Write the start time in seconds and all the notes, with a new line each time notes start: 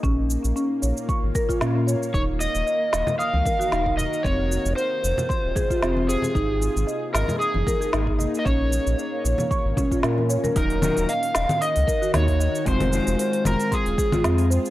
Already playing: A#3 D#4 G#4
0.03 A#1 A#2 C#4, kick, shaker
0.18 F5
0.30 shaker
0.35 F4 C#5
0.44 A#1, shaker
0.56 C#4, shaker
0.82 A#1 C#5, shaker
0.97 shaker
1.09 C#6, kick, shaker
1.23 G#1
1.35 A#4, kick, shaker
1.49 F4, kick, shaker
1.61 A#2 C#4, snare, shaker
1.75 C#4
1.87 C#5, shaker
2.03 shaker
2.14 D#1 D#3 D#4 C#5, kick, shaker
2.27 F#4 A#4
2.40 D#5, high bongo, shaker
2.50 D#5
2.55 D#1, shaker
2.67 D#5, shaker
2.93 D#1 D#5, snare, shaker
3.07 high bongo, high conga, low conga, shaker
3.19 F5 D#6, shaker
3.34 C#2, high conga
3.45 A#4, kick, high bongo, high conga, shaker
3.60 F#4, shaker
3.72 D#1 D#4, snare, shaker
3.86 D#4, kick
3.97 D#5, low conga, shaker
4.13 shaker
4.23 F1 C3 C4 C#5, kick, shaker
4.36 F4
4.52 shaker
4.65 F1, shaker
4.71 G#4
4.76 C5, shaker
5.03 F1 C5, shaker
5.17 high bongo, high conga, low conga, shaker
5.29 C6, kick, shaker
5.45 D#1
5.55 G#4, kick, high bongo, low conga, shaker
5.70 F4, kick, shaker
5.83 F1 C4, snare, shaker
5.97 C4, high bongo, high conga
6.09 G#4 C5, shaker
6.22 high conga, low conga, shaker
6.35 G#1 A#3 D#4, kick, shaker
6.60 D#4, high bongo, shaker
6.76 G#1, shaker
6.87 D#5, shaker
7.14 G#1 A#4 D#5, snare, shaker
7.28 high bongo, high conga, low conga, shaker
7.39 G#4 D#6, shaker
7.54 F#1, high conga
7.67 A#4, kick, high bongo, high conga, shaker
7.81 G#4, shaker
7.93 G#1 D#4, snare, shaker
8.07 D#4, kick
8.19 D#5, low conga, shaker
8.35 shaker
8.39 D#5
8.45 A#1 A#2 C#4 C#5, kick, shaker
8.70 high bongo, high conga, shaker
8.85 A#1 C#4, shaker
8.96 F4 C#5 F5, shaker
9.24 A#1 C#5, shaker
9.38 high bongo, high conga, low conga, shaker
9.51 C#6, kick, shaker
9.65 G#1
9.77 C#4, kick, high bongo, low conga, shaker
9.92 F4, kick, shaker
10.03 A#2 A#4, snare, shaker
10.18 A#4, high bongo, high conga
10.30 C#5, shaker
10.44 A#4, high conga, low conga, shaker
10.55 D#1 D#3 F#3 D#4 A#4, kick, open hi-hat, shaker
10.70 D#4 F#4, open hi-hat
10.82 F#3 D#4 A#4, low conga, shaker
10.97 D#1 A#4, open hi-hat, shaker
11.09 D#5 F5, open hi-hat, shaker
11.18 A#4
11.23 open hi-hat
11.34 D#1 D#5, snare, shaker
11.49 open hi-hat, low conga, shaker
11.61 D#5 D#6, open hi-hat, shaker
11.76 C#2, open hi-hat
11.87 A#4, kick, shaker
12.02 F#4, shaker
12.14 D#2 D#4 C#5, snare, open hi-hat, low conga, shaker
12.28 D#4, kick, open hi-hat
12.40 D#5, shaker
12.55 shaker
12.66 F1 G#3 C4 F4 C5, kick, open hi-hat, shaker
12.80 open hi-hat, low conga
12.91 G#3 F4 C5, shaker
12.95 F4
13.07 F1, open hi-hat, shaker
13.19 C5, open hi-hat, shaker
13.33 G#4, open hi-hat
13.45 F1 A#4 C5, low conga, shaker
13.60 open hi-hat, shaker
13.72 G#4 C6, kick, open hi-hat, shaker
13.86 D#1, open hi-hat
13.98 G#4, kick, shaker
14.12 F4, kick, low conga, shaker
14.24 F2 C4, snare, open hi-hat, shaker
14.38 C4, open hi-hat
14.50 C5, shaker
14.66 shaker